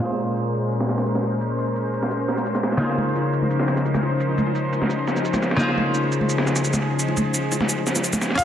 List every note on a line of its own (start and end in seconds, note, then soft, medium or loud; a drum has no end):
0.00 2.77 A#2 medium
0.00 2.77 G#3 medium
0.00 8.35 C#4 medium
0.00 2.79 F4 medium
0.00 2.80 G#4 medium
0.00 5.56 A#4 medium
0.00 8.35 C5 medium
0.00 ride medium
0.00 cabasa soft
0.05 2.80 C5 medium
0.11 snare soft
0.19 ride medium
0.28 ride soft
0.36 ride medium
0.36 cabasa soft
0.54 ride medium
0.54 cabasa soft
0.71 ride medium
0.71 cabasa soft
0.80 snare medium
0.89 snare soft
0.89 ride medium
0.89 cabasa soft
0.97 snare soft
0.97 cabasa medium
1.06 ride medium
1.06 cabasa soft
1.15 snare soft
1.15 cabasa medium
1.24 ride medium
1.41 ride medium
1.41 cabasa soft
1.59 ride medium
1.59 cabasa soft
1.76 ride medium
1.76 cabasa soft
1.94 ride medium
1.94 cabasa soft
2.03 snare soft
2.11 ride medium
2.11 cabasa soft
2.20 ride soft
2.28 snare soft
2.28 ride medium
2.28 cabasa soft
2.37 snare soft
2.37 cabasa medium
2.46 ride medium
2.46 cabasa soft
2.55 snare soft
2.55 cabasa medium
2.63 snare medium
2.63 ride medium
2.63 cabasa soft
2.72 snare soft
2.77 5.55 C#3 medium
2.77 8.35 F3 medium
2.77 5.57 A#3 medium
2.77 5.57 D#4 medium
2.77 8.35 D#4 medium
2.77 ride medium
2.77 cabasa soft
2.81 5.58 F4 medium
2.81 5.59 G#4 medium
2.81 5.59 C5 medium
2.90 snare medium
2.98 ride medium
2.98 high bongo soft
2.98 high conga medium
3.07 ride soft
3.16 ride medium
3.16 high bongo medium
3.16 cabasa soft
3.33 ride medium
3.33 cabasa soft
3.42 high bongo soft
3.42 high conga medium
3.51 ride medium
3.51 cabasa soft
3.59 snare medium
3.59 high bongo medium
3.68 snare soft
3.68 ride medium
3.68 cabasa soft
3.77 snare soft
3.77 cabasa medium
3.85 ride medium
3.85 high bongo soft
3.85 cabasa soft
3.94 snare soft
3.94 high conga medium
3.94 cabasa medium
4.02 ride medium
4.02 high bongo medium
4.20 ride medium
4.20 cabasa soft
4.29 high bongo soft
4.38 ride medium
4.38 high conga medium
4.38 cabasa soft
4.47 high bongo medium
4.55 ride medium
4.55 cabasa soft
4.73 ride medium
4.73 high bongo soft
4.73 cabasa soft
4.82 snare soft
4.82 high conga medium
4.89 ride medium
4.89 high bongo medium
4.89 cabasa soft
4.99 ride soft
5.08 snare soft
5.08 ride medium
5.08 cabasa soft
5.16 snare soft
5.16 high bongo soft
5.16 cabasa medium
5.25 ride medium
5.25 cabasa soft
5.33 snare soft
5.33 high bongo medium
5.33 high conga medium
5.33 cabasa medium
5.42 snare medium
5.42 ride medium
5.42 cabasa soft
5.51 snare soft
5.56 8.35 C#3 medium
5.56 8.36 A#3 medium
5.56 8.35 D#4 medium
5.56 8.36 F4 medium
5.56 8.36 G#4 medium
5.56 ride medium
5.56 cabasa soft
5.60 8.38 G#4 medium
5.60 8.39 C5 medium
5.60 high bongo soft
5.69 snare medium
5.77 ride medium
5.77 high bongo medium
5.77 high conga medium
5.86 ride soft
5.95 ride medium
5.95 cabasa soft
6.04 high bongo soft
6.12 ride medium
6.12 cabasa soft
6.21 high bongo medium
6.21 high conga medium
6.29 ride medium
6.29 cabasa soft
6.38 snare medium
6.47 snare soft
6.47 ride medium
6.47 high bongo medium
6.47 cabasa soft
6.56 snare soft
6.56 cabasa medium
6.64 ride medium
6.64 high bongo medium
6.64 cabasa soft
6.73 snare soft
6.73 high conga medium
6.73 cabasa medium
6.82 ride medium
6.91 high bongo soft
6.99 ride medium
6.99 cabasa soft
7.08 high bongo medium
7.17 ride medium
7.17 high conga medium
7.17 cabasa soft
7.34 ride medium
7.34 high bongo soft
7.34 cabasa soft
7.52 ride medium
7.52 high bongo medium
7.52 cabasa soft
7.60 snare soft
7.60 high conga medium
7.69 ride medium
7.69 cabasa soft
7.78 ride soft
7.78 high bongo soft
7.87 snare soft
7.87 ride medium
7.87 cabasa soft
7.96 snare soft
7.96 high bongo medium
7.96 cabasa medium
8.04 ride medium
8.04 cabasa soft
8.13 snare soft
8.13 high conga medium
8.13 cabasa medium
8.21 snare medium
8.21 ride medium
8.21 high bongo medium
8.21 cabasa soft
8.30 snare soft
8.35 8.44 G#3 medium
8.35 8.44 C#4 medium
8.35 8.44 F4 medium
8.35 8.44 F5 loud
8.35 kick loud
8.35 closed hi-hat medium
8.35 ride medium
8.35 cabasa soft